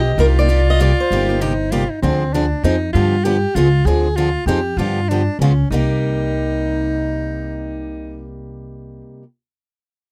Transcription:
0.00 0.14 B1 medium
0.00 0.13 G4 loud
0.00 0.20 D#5 medium
0.13 0.21 G4 medium
0.18 0.92 C2 medium
0.18 0.36 C3 medium
0.18 0.36 G3 medium
0.18 0.36 A#3 medium
0.18 0.37 D#4 medium
0.18 1.43 F4 loud
0.18 0.36 G4 medium
0.18 0.25 A#4 medium
0.39 0.48 A#3 medium
0.39 0.48 D#4 medium
0.39 0.49 G4 medium
0.39 0.66 D5 medium
0.49 0.60 C3 medium
0.49 0.60 G3 medium
0.49 0.60 A#3 medium
0.49 0.60 D#4 medium
0.49 0.60 G4 loud
0.70 0.81 D#5 medium
0.80 0.91 C3 medium
0.80 0.91 G3 medium
0.80 0.91 A#3 loud
0.80 0.91 D#4 loud
0.80 0.91 G4 loud
0.80 0.98 D5 medium
1.00 1.87 C5 medium
1.11 1.84 G1 medium
1.11 1.29 C3 medium
1.11 1.29 G3 medium
1.11 1.29 A#3 medium
1.11 1.28 D#4 medium
1.11 1.27 G4 medium
1.29 1.41 A#3 soft
1.29 1.41 D#4 soft
1.29 1.40 G4 medium
1.41 1.52 C3 medium
1.41 1.52 G3 medium
1.41 1.52 A#3 medium
1.41 1.73 D#4 medium
1.41 1.52 D#4 loud
1.41 1.52 G4 loud
1.72 1.83 C3 medium
1.72 1.83 G3 medium
1.72 1.83 A#3 medium
1.72 1.83 D#4 medium
1.72 1.91 F4 medium
1.72 1.83 G4 loud
1.90 2.01 D#4 medium
2.02 2.51 D2 medium
2.02 2.23 D3 medium
2.02 2.23 F3 medium
2.02 2.35 C4 medium
2.02 2.23 C4 medium
2.02 2.23 D4 medium
2.02 2.23 G#4 medium
2.34 2.44 D3 medium
2.34 2.44 F3 medium
2.34 2.45 C4 medium
2.34 2.63 D4 medium
2.34 2.45 D4 medium
2.34 2.45 G#4 medium
2.63 2.88 F2 medium
2.63 2.75 F3 medium
2.63 2.75 C4 medium
2.63 2.92 D#4 medium
2.63 2.75 D#4 medium
2.63 2.75 G#4 loud
2.93 3.43 G2 medium
2.93 3.15 D3 medium
2.93 3.14 F3 medium
2.93 3.15 B3 medium
2.93 3.15 D4 medium
2.93 3.26 F4 medium
2.93 3.15 G4 medium
3.24 3.36 D3 medium
3.24 3.36 F3 medium
3.24 3.36 B3 medium
3.24 3.36 D4 medium
3.24 3.57 G4 loud
3.24 3.36 G4 medium
3.55 3.80 C#2 medium
3.55 3.67 C#3 medium
3.55 3.67 G#3 medium
3.55 3.67 B3 medium
3.55 3.87 F4 medium
3.55 3.67 F4 loud
3.55 3.67 G#4 medium
3.85 4.35 D2 medium
3.85 4.06 D3 medium
3.85 4.07 F3 medium
3.85 4.07 C4 medium
3.85 4.07 D4 medium
3.85 4.17 G#4 loud
3.85 4.07 G#4 medium
4.16 4.28 D3 medium
4.16 4.28 F3 medium
4.16 4.28 C4 medium
4.16 4.28 D4 medium
4.16 4.47 F4 medium
4.16 4.28 G#4 medium
4.46 4.71 F2 medium
4.46 4.59 F3 medium
4.46 4.59 C4 loud
4.46 4.59 D#4 loud
4.46 4.80 G4 medium
4.46 4.59 G#4 loud
4.77 5.26 G2 medium
4.77 4.98 D3 medium
4.77 4.99 F3 medium
4.77 4.99 B3 medium
4.77 4.99 D4 medium
4.77 5.10 F4 medium
4.77 4.99 G4 medium
5.09 5.21 D3 medium
5.09 5.21 F3 medium
5.09 5.21 B3 medium
5.09 5.40 D4 medium
5.09 5.21 D4 medium
5.09 5.21 G4 medium
5.39 5.64 C#2 medium
5.39 5.52 C#3 medium
5.39 5.52 G#3 medium
5.39 5.52 B3 medium
5.39 5.69 C#4 medium
5.39 5.52 F4 medium
5.39 5.52 G#4 loud
5.70 9.01 C2 medium
5.70 9.22 C3 medium
5.70 9.22 G3 medium
5.70 9.23 A#3 medium
5.70 8.31 D#4 medium
5.70 9.24 D#4 medium
5.70 9.24 G4 medium

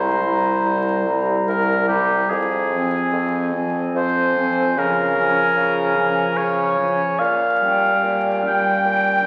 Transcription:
0.00 0.55 C2 soft
0.00 0.22 G3 soft
0.00 0.22 E4 soft
0.00 1.30 C5 soft
0.00 0.22 A#5 soft
0.22 1.05 G3 soft
0.22 1.05 E4 soft
0.22 1.06 A#5 soft
0.64 1.38 C2 soft
1.07 1.87 G3 soft
1.07 1.87 E4 soft
1.07 1.87 A#5 soft
1.47 2.20 C2 soft
1.47 1.87 A#4 medium
1.88 2.30 G3 soft
1.88 2.29 E4 soft
1.88 2.32 G4 soft
1.88 2.29 A#5 soft
2.30 3.03 F2 soft
2.30 3.69 G#4 medium
2.72 3.53 F3 soft
2.72 3.53 C4 soft
2.72 3.53 G#5 soft
3.12 3.85 F2 soft
3.54 4.36 F3 soft
3.54 4.36 C4 soft
3.54 4.35 G#5 soft
3.95 4.68 F2 soft
3.95 4.80 C5 medium
4.37 4.77 F3 soft
4.37 4.77 C4 soft
4.37 4.77 G#5 soft
4.77 5.48 C#3 soft
4.77 5.17 F3 soft
4.77 5.16 C#4 soft
4.77 6.39 A#4 medium
4.77 5.17 G#5 soft
5.17 5.96 F3 soft
5.17 5.96 C#4 soft
5.17 5.96 G#5 soft
5.56 6.28 C#3 soft
5.97 6.78 F3 soft
5.97 6.78 C#4 soft
5.97 6.78 G#5 soft
6.37 7.03 C#3 soft
6.37 7.21 C#5 medium
6.79 7.20 F3 soft
6.79 7.19 C#4 soft
6.79 7.19 G#5 soft
7.19 7.94 A#2 medium
7.19 8.45 F5 medium
7.61 8.43 G3 soft
7.61 8.43 C#4 soft
7.61 8.43 G5 soft
8.03 8.75 A#2 soft
8.44 9.23 G3 soft
8.44 9.22 C#4 soft
8.44 9.23 G5 soft
8.44 9.27 G5 medium
8.85 9.27 A#2 soft
9.23 9.27 C#4 soft
9.23 9.27 G5 soft

